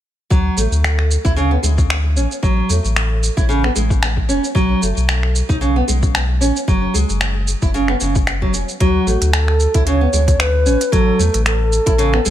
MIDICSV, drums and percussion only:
0, 0, Header, 1, 2, 480
1, 0, Start_track
1, 0, Tempo, 530973
1, 278, Time_signature, 4, 2, 24, 8
1, 11120, End_track
2, 0, Start_track
2, 0, Title_t, "Drums"
2, 280, Note_on_c, 9, 36, 105
2, 281, Note_on_c, 9, 82, 29
2, 371, Note_off_c, 9, 36, 0
2, 371, Note_off_c, 9, 82, 0
2, 520, Note_on_c, 9, 82, 70
2, 610, Note_off_c, 9, 82, 0
2, 654, Note_on_c, 9, 82, 42
2, 744, Note_off_c, 9, 82, 0
2, 763, Note_on_c, 9, 26, 99
2, 765, Note_on_c, 9, 82, 32
2, 853, Note_off_c, 9, 26, 0
2, 855, Note_off_c, 9, 82, 0
2, 892, Note_on_c, 9, 26, 30
2, 983, Note_off_c, 9, 26, 0
2, 1003, Note_on_c, 9, 82, 69
2, 1093, Note_off_c, 9, 82, 0
2, 1131, Note_on_c, 9, 36, 97
2, 1132, Note_on_c, 9, 82, 39
2, 1222, Note_off_c, 9, 36, 0
2, 1223, Note_off_c, 9, 82, 0
2, 1239, Note_on_c, 9, 82, 30
2, 1329, Note_off_c, 9, 82, 0
2, 1479, Note_on_c, 9, 82, 77
2, 1570, Note_off_c, 9, 82, 0
2, 1611, Note_on_c, 9, 36, 94
2, 1611, Note_on_c, 9, 82, 41
2, 1701, Note_off_c, 9, 36, 0
2, 1702, Note_off_c, 9, 82, 0
2, 1720, Note_on_c, 9, 26, 92
2, 1722, Note_on_c, 9, 82, 29
2, 1811, Note_off_c, 9, 26, 0
2, 1812, Note_off_c, 9, 82, 0
2, 1960, Note_on_c, 9, 82, 78
2, 2051, Note_off_c, 9, 82, 0
2, 2093, Note_on_c, 9, 82, 43
2, 2184, Note_off_c, 9, 82, 0
2, 2198, Note_on_c, 9, 36, 106
2, 2203, Note_on_c, 9, 82, 31
2, 2289, Note_off_c, 9, 36, 0
2, 2293, Note_off_c, 9, 82, 0
2, 2438, Note_on_c, 9, 82, 76
2, 2529, Note_off_c, 9, 82, 0
2, 2575, Note_on_c, 9, 82, 42
2, 2666, Note_off_c, 9, 82, 0
2, 2680, Note_on_c, 9, 26, 108
2, 2682, Note_on_c, 9, 82, 35
2, 2770, Note_off_c, 9, 26, 0
2, 2772, Note_off_c, 9, 82, 0
2, 2922, Note_on_c, 9, 82, 77
2, 3012, Note_off_c, 9, 82, 0
2, 3050, Note_on_c, 9, 36, 103
2, 3052, Note_on_c, 9, 82, 42
2, 3141, Note_off_c, 9, 36, 0
2, 3142, Note_off_c, 9, 82, 0
2, 3163, Note_on_c, 9, 82, 32
2, 3253, Note_off_c, 9, 82, 0
2, 3293, Note_on_c, 9, 26, 31
2, 3384, Note_off_c, 9, 26, 0
2, 3398, Note_on_c, 9, 82, 81
2, 3488, Note_off_c, 9, 82, 0
2, 3529, Note_on_c, 9, 36, 92
2, 3533, Note_on_c, 9, 82, 40
2, 3620, Note_off_c, 9, 36, 0
2, 3623, Note_off_c, 9, 82, 0
2, 3640, Note_on_c, 9, 26, 94
2, 3641, Note_on_c, 9, 82, 31
2, 3730, Note_off_c, 9, 26, 0
2, 3731, Note_off_c, 9, 82, 0
2, 3769, Note_on_c, 9, 36, 59
2, 3860, Note_off_c, 9, 36, 0
2, 3881, Note_on_c, 9, 82, 80
2, 3971, Note_off_c, 9, 82, 0
2, 4015, Note_on_c, 9, 82, 45
2, 4105, Note_off_c, 9, 82, 0
2, 4116, Note_on_c, 9, 36, 112
2, 4121, Note_on_c, 9, 82, 33
2, 4206, Note_off_c, 9, 36, 0
2, 4211, Note_off_c, 9, 82, 0
2, 4362, Note_on_c, 9, 82, 74
2, 4452, Note_off_c, 9, 82, 0
2, 4493, Note_on_c, 9, 82, 41
2, 4584, Note_off_c, 9, 82, 0
2, 4599, Note_on_c, 9, 26, 98
2, 4601, Note_on_c, 9, 82, 34
2, 4690, Note_off_c, 9, 26, 0
2, 4691, Note_off_c, 9, 82, 0
2, 4730, Note_on_c, 9, 26, 29
2, 4821, Note_off_c, 9, 26, 0
2, 4840, Note_on_c, 9, 82, 76
2, 4930, Note_off_c, 9, 82, 0
2, 4968, Note_on_c, 9, 36, 105
2, 4970, Note_on_c, 9, 82, 41
2, 5059, Note_off_c, 9, 36, 0
2, 5060, Note_off_c, 9, 82, 0
2, 5079, Note_on_c, 9, 82, 33
2, 5169, Note_off_c, 9, 82, 0
2, 5320, Note_on_c, 9, 82, 84
2, 5410, Note_off_c, 9, 82, 0
2, 5449, Note_on_c, 9, 36, 97
2, 5450, Note_on_c, 9, 82, 42
2, 5540, Note_off_c, 9, 36, 0
2, 5540, Note_off_c, 9, 82, 0
2, 5559, Note_on_c, 9, 26, 89
2, 5560, Note_on_c, 9, 82, 29
2, 5649, Note_off_c, 9, 26, 0
2, 5651, Note_off_c, 9, 82, 0
2, 5801, Note_on_c, 9, 82, 74
2, 5891, Note_off_c, 9, 82, 0
2, 5934, Note_on_c, 9, 82, 46
2, 6024, Note_off_c, 9, 82, 0
2, 6039, Note_on_c, 9, 36, 115
2, 6043, Note_on_c, 9, 82, 33
2, 6129, Note_off_c, 9, 36, 0
2, 6134, Note_off_c, 9, 82, 0
2, 6281, Note_on_c, 9, 82, 75
2, 6371, Note_off_c, 9, 82, 0
2, 6413, Note_on_c, 9, 82, 43
2, 6503, Note_off_c, 9, 82, 0
2, 6516, Note_on_c, 9, 26, 101
2, 6518, Note_on_c, 9, 82, 33
2, 6607, Note_off_c, 9, 26, 0
2, 6609, Note_off_c, 9, 82, 0
2, 6758, Note_on_c, 9, 82, 80
2, 6848, Note_off_c, 9, 82, 0
2, 6889, Note_on_c, 9, 82, 41
2, 6892, Note_on_c, 9, 36, 98
2, 6979, Note_off_c, 9, 82, 0
2, 6982, Note_off_c, 9, 36, 0
2, 7000, Note_on_c, 9, 82, 35
2, 7091, Note_off_c, 9, 82, 0
2, 7126, Note_on_c, 9, 26, 30
2, 7216, Note_off_c, 9, 26, 0
2, 7234, Note_on_c, 9, 82, 85
2, 7325, Note_off_c, 9, 82, 0
2, 7369, Note_on_c, 9, 82, 42
2, 7373, Note_on_c, 9, 36, 97
2, 7459, Note_off_c, 9, 82, 0
2, 7463, Note_off_c, 9, 36, 0
2, 7478, Note_on_c, 9, 26, 87
2, 7479, Note_on_c, 9, 82, 30
2, 7568, Note_off_c, 9, 26, 0
2, 7570, Note_off_c, 9, 82, 0
2, 7614, Note_on_c, 9, 36, 60
2, 7704, Note_off_c, 9, 36, 0
2, 7718, Note_on_c, 9, 82, 79
2, 7809, Note_off_c, 9, 82, 0
2, 7852, Note_on_c, 9, 82, 45
2, 7943, Note_off_c, 9, 82, 0
2, 7960, Note_on_c, 9, 42, 40
2, 7961, Note_on_c, 9, 36, 102
2, 7961, Note_on_c, 9, 82, 30
2, 8050, Note_off_c, 9, 42, 0
2, 8051, Note_off_c, 9, 36, 0
2, 8052, Note_off_c, 9, 82, 0
2, 8203, Note_on_c, 9, 82, 68
2, 8293, Note_off_c, 9, 82, 0
2, 8333, Note_on_c, 9, 42, 52
2, 8334, Note_on_c, 9, 82, 40
2, 8423, Note_off_c, 9, 42, 0
2, 8424, Note_off_c, 9, 82, 0
2, 8438, Note_on_c, 9, 26, 94
2, 8438, Note_on_c, 9, 42, 40
2, 8440, Note_on_c, 9, 82, 33
2, 8529, Note_off_c, 9, 26, 0
2, 8529, Note_off_c, 9, 42, 0
2, 8530, Note_off_c, 9, 82, 0
2, 8572, Note_on_c, 9, 26, 28
2, 8662, Note_off_c, 9, 26, 0
2, 8679, Note_on_c, 9, 82, 75
2, 8769, Note_off_c, 9, 82, 0
2, 8809, Note_on_c, 9, 42, 47
2, 8811, Note_on_c, 9, 82, 40
2, 8813, Note_on_c, 9, 36, 97
2, 8899, Note_off_c, 9, 42, 0
2, 8901, Note_off_c, 9, 82, 0
2, 8903, Note_off_c, 9, 36, 0
2, 8920, Note_on_c, 9, 42, 42
2, 8921, Note_on_c, 9, 82, 34
2, 9010, Note_off_c, 9, 42, 0
2, 9012, Note_off_c, 9, 82, 0
2, 9160, Note_on_c, 9, 82, 78
2, 9250, Note_off_c, 9, 82, 0
2, 9292, Note_on_c, 9, 36, 99
2, 9293, Note_on_c, 9, 42, 51
2, 9295, Note_on_c, 9, 82, 44
2, 9382, Note_off_c, 9, 36, 0
2, 9384, Note_off_c, 9, 42, 0
2, 9385, Note_off_c, 9, 82, 0
2, 9400, Note_on_c, 9, 26, 92
2, 9400, Note_on_c, 9, 42, 37
2, 9402, Note_on_c, 9, 82, 31
2, 9490, Note_off_c, 9, 26, 0
2, 9490, Note_off_c, 9, 42, 0
2, 9492, Note_off_c, 9, 82, 0
2, 9638, Note_on_c, 9, 82, 76
2, 9729, Note_off_c, 9, 82, 0
2, 9773, Note_on_c, 9, 42, 52
2, 9775, Note_on_c, 9, 82, 43
2, 9863, Note_off_c, 9, 42, 0
2, 9865, Note_off_c, 9, 82, 0
2, 9878, Note_on_c, 9, 36, 102
2, 9881, Note_on_c, 9, 42, 44
2, 9883, Note_on_c, 9, 82, 31
2, 9969, Note_off_c, 9, 36, 0
2, 9972, Note_off_c, 9, 42, 0
2, 9973, Note_off_c, 9, 82, 0
2, 10123, Note_on_c, 9, 82, 70
2, 10214, Note_off_c, 9, 82, 0
2, 10253, Note_on_c, 9, 42, 49
2, 10255, Note_on_c, 9, 82, 42
2, 10344, Note_off_c, 9, 42, 0
2, 10345, Note_off_c, 9, 82, 0
2, 10359, Note_on_c, 9, 26, 97
2, 10359, Note_on_c, 9, 42, 42
2, 10361, Note_on_c, 9, 82, 31
2, 10450, Note_off_c, 9, 26, 0
2, 10450, Note_off_c, 9, 42, 0
2, 10451, Note_off_c, 9, 82, 0
2, 10599, Note_on_c, 9, 82, 69
2, 10689, Note_off_c, 9, 82, 0
2, 10729, Note_on_c, 9, 42, 53
2, 10730, Note_on_c, 9, 82, 41
2, 10731, Note_on_c, 9, 36, 97
2, 10819, Note_off_c, 9, 42, 0
2, 10821, Note_off_c, 9, 36, 0
2, 10821, Note_off_c, 9, 82, 0
2, 10839, Note_on_c, 9, 42, 41
2, 10840, Note_on_c, 9, 82, 30
2, 10929, Note_off_c, 9, 42, 0
2, 10931, Note_off_c, 9, 82, 0
2, 10971, Note_on_c, 9, 26, 28
2, 11061, Note_off_c, 9, 26, 0
2, 11078, Note_on_c, 9, 82, 78
2, 11120, Note_off_c, 9, 82, 0
2, 11120, End_track
0, 0, End_of_file